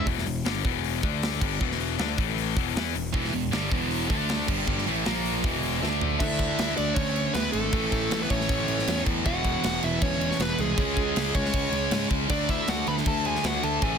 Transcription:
0.05 E1 E2 B2 E3, kick, open hi-hat
0.18 snare
0.26 E1 E2 B2, open hi-hat
0.44 G1 G2 D3 G3, snare, open hi-hat
0.64 E1 E2 B2 E3, kick, open hi-hat
0.84 open hi-hat
1.03 D2 D3 A3 D4, kick, open hi-hat
1.23 snare, open hi-hat
1.41 G1 G2 D3 G3, kick, crash
1.60 E1 E2 B2 E3, kick
1.71 snare
1.80 open hi-hat
1.98 D2 D3 A3 D4, snare, open hi-hat
2.18 A1 A2 E3 A3, kick, open hi-hat
2.38 open hi-hat
2.56 E1 E2 B2 E3, kick, open hi-hat
2.76 E2 E3 B3 E4, snare, open hi-hat
2.95 E1 E2 B2, open hi-hat
3.14 E1 E2 B2 E3, kick, open hi-hat
3.24 snare
3.33 E1 E2 B2, open hi-hat
3.51 G1 G2 D3 G3, snare, open hi-hat
3.71 E1 E2 B2 E3, kick, open hi-hat
3.91 open hi-hat
4.09 D2 D3 A3 D4, kick
4.29 snare, open hi-hat
4.48 G1 G2 D3 G3, kick, crash
4.67 G1 G2 D3 G3, kick
4.78 snare
4.86 A1 A2 E3 A3, open hi-hat
5.05 A#1 A#2 F3 A#3, snare, open hi-hat
5.25 open hi-hat
5.43 E1 E2 B2 E3, kick, open hi-hat
5.63 open hi-hat
5.82 D2 D3 A3 D4, snare
6.01 floor tom
6.19 D2 D3 A3 D4 E4 E5, kick, crash
6.39 kick, crash
6.59 D2, snare, crash
6.77 D2 D4 D5, crash
6.94 D2 C#4 C#5, kick, crash
7.16 crash
7.34 D2 B3 B4, snare, crash
7.52 G#1 A3 A4, crash
7.72 A1 A2 E3 A3, kick, crash
7.92 A1, kick, crash
8.11 A1, snare, crash
8.23 B3 B4
8.30 A1 C#4 C#5, kick, crash
8.41 snare
8.49 A1, kick, crash
8.68 A1, crash
8.79 snare
8.87 E2, snare, crash
9.06 E2, kick, crash
9.25 E1 E2 B2 E3 F#4 F#5, kick, crash
9.44 kick, crash
9.64 E1, snare, crash
9.83 E1 E4 E5, crash
10.02 E1 C#4 C#5, kick, crash
10.21 crash
10.31 snare
10.39 E1 B3 B4, snare, crash
10.58 C2 G#3 G#4, crash
10.77 C#2 C#3 G#3 C#4, kick, crash
10.97 C#2, kick, crash
11.16 C#2, snare, crash
11.35 C#2 C#4 C#5, kick, crash
11.45 snare
11.53 C#2, kick, crash
11.72 C#2, crash
11.91 G#2, snare, crash
12.11 C#2, kick, crash
12.28 D2 D3 A3 D4 D5, kick, crash
12.49 E4 E5, kick, crash
12.68 D2 F#4 F#5, snare, crash
12.87 D2 B4 B5, crash
12.97 snare
13.06 D2 A4 A5, kick, crash
13.25 G#4 G#5, crash
13.35 snare
13.44 D2 F#4 F#5, snare, crash
13.63 D2 A4 A5, crash
13.82 A1 A2 E3 A3 G#4 G#5, kick, crash

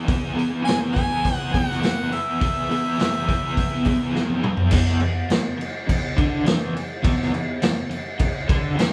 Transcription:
0.05 E3 B3 E4 G#4, kick, open hi-hat
0.34 E3 B3 E4 G#4
0.39 open hi-hat
0.49 B3 E4 G#4
0.63 E3 B3 E4 G#4 G#5
0.67 snare, open hi-hat
0.78 B3 E4 G#4
0.93 E3 B3 E4 G#4 G#5, kick
0.97 open hi-hat
1.08 B3 E4 G#4
1.25 kick, open hi-hat
1.36 E4 G#4 F#5
1.40 B3
1.52 E3 B3 E4 G#4 F#5, kick, open hi-hat
1.66 B3 E4 G#4
1.70 snare
1.80 E3 B3 E4 G#4, open hi-hat
1.84 snare
2.10 E3 B3 E4 G#4, open hi-hat
2.14 E5
2.40 E3 B3 E4 G#4, kick, open hi-hat
2.69 E3 B3 E4 G#4, open hi-hat
2.83 B3 E4 G#4
2.98 E3 B3 E4 G#4, snare, open hi-hat
3.12 B3 E4 G#4
3.26 E3 B3 E4 G#4, kick, open hi-hat
3.41 B3 E4 G#4
3.57 kick, open hi-hat
3.70 B3 E4 G#4
3.85 E3 B3 E4 G#4, kick, open hi-hat
3.99 B3 E4 G#4
4.13 E3 B3 E4 G#4, snare
4.30 high tom
4.41 E3 B3 E4 G#4, mid tom
4.57 floor tom
4.71 E2 E3, kick, crash
4.88 snare
5.00 E2, crash
5.30 E2, snare, crash
5.58 muted overdriven electric guitar stroke, crash
5.87 E2, kick, crash
6.17 D3 D4, kick, crash
6.44 E2 E3, snare, crash
6.75 muted overdriven electric guitar stroke, crash
7.03 E2 E3, kick, crash
7.22 snare
7.33 E2, crash
7.62 E2, snare, crash
7.90 muted overdriven electric guitar stroke, crash
8.19 E2, kick, crash
8.48 D3 D4, kick, crash
8.75 E2 E3, crash
8.80 snare

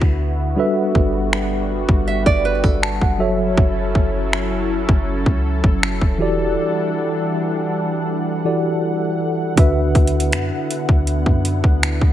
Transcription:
Already playing: D3 B3 D4 E4 F#4 B4 E5
0.01 D2, kick
0.56 G3 D4 F#4 A4 B4 E5
0.95 G1, kick
1.33 finger snap
1.89 G1, kick
2.08 E5
2.26 G1 D5, kick
2.45 B4
2.64 G1 A4, kick
2.83 A5, finger snap
3.01 F#1 F#5, kick
3.18 F#3 C#4 E4 F#4 A4 C#5 E5
3.57 F#1, kick
3.95 F#1, kick
4.33 finger snap
4.89 F#1, kick
5.26 C#2, kick
5.64 F#1, kick
5.83 finger snap
6.01 E1, kick
6.18 E3 G3 D4 E4 F#4 G4 A4 D5 F#5
8.44 E3 E4 F#4 G4 A4 D5
9.56 D2 D3 B3 D4 E4 F#4 B4 E5, kick, closed hi-hat
9.95 D2, kick, closed hi-hat
10.07 closed hi-hat
10.20 closed hi-hat
10.32 F#2, finger snap, closed hi-hat
10.71 closed hi-hat
10.89 D2, kick
11.07 closed hi-hat
11.26 F#2, kick
11.45 closed hi-hat
11.64 D2, kick
11.83 finger snap, closed hi-hat
12.01 D2, kick

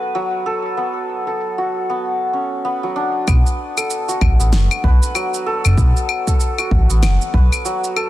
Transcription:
Already playing: F#3 B3 F#4 A4 B4
0.02 shaker
0.15 F#3, shaker
0.34 shaker
0.46 A4
0.65 shaker
0.77 B3, shaker
0.96 shaker
1.27 A4, shaker
1.40 shaker
1.58 F#4, shaker
1.90 B3, shaker
2.33 C#4
2.65 B3
2.83 F#3
2.96 D4
3.27 B1 B3, kick, claves, shaker
3.46 shaker
3.77 A4, claves, shaker
3.90 shaker
4.08 F#4, shaker
4.21 A1, kick, claves
4.40 A1 B3, shaker
4.53 F#1, snare, shaker
4.71 claves, shaker
4.84 B1 B4, kick
5.03 shaker
5.15 F#3, claves, shaker
5.34 shaker
5.46 A4
5.65 F#1, claves, shaker
5.78 B1 B3, kick, shaker
5.97 shaker
6.09 claves
6.27 A4, kick, shaker
6.40 shaker
6.58 F#4, claves, shaker
6.71 A1, kick
6.90 A1 B3, shaker
7.03 F#1, snare, claves, shaker
7.22 shaker
7.34 B1 B4, kick
7.52 claves, shaker
7.65 F#3, shaker
7.84 shaker
7.96 A4, claves

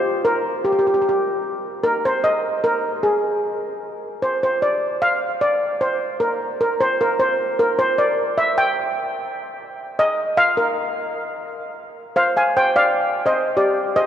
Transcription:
Already playing: C5
0.25 A#4
0.64 G4
0.72 G4
0.79 G4
0.87 G4
0.94 G4
1.02 G4
1.09 G4
1.84 A#4
2.05 C5
2.24 D#5
2.64 A#4
3.03 G#4
4.22 C5
4.43 C5
4.62 D5
5.02 F5
5.41 D5
5.81 C5
6.20 A#4
6.61 A#4
6.81 C5
7.01 A#4
7.20 C5
7.59 A#4
7.79 C5
7.98 D5
8.38 E5
8.58 G5
9.99 D#5
10.37 F5
10.57 A#4
12.16 C5 F5
12.37 F5 G#5
12.57 C5 G5
12.76 D5 F5
13.26 C5 D#5
13.57 G4 D5
13.96 C5 D#5

